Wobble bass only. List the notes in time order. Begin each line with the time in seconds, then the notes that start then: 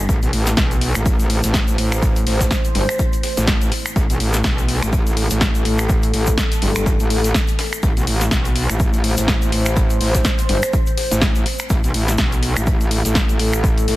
0.09 A1
0.23 B1
0.33 A1
0.57 B1
0.95 A1
1.44 A1
1.78 A1
2.27 A1
2.75 G1
3.37 A1
3.96 A1
4.10 B1
4.20 A1
4.44 B1
4.82 A1
5.31 A1
5.65 A1
6.14 A1
6.62 G1
6.76 G1
7.00 A1
7.83 A1
7.97 B1
8.07 A1
8.31 B1
8.69 A1
9.18 A1
9.52 A1
10.01 A1
10.49 G1
11.11 A1
11.70 A1
11.84 B1
11.94 A1
12.19 B1
12.57 A1
13.05 A1
13.40 A1
13.88 A1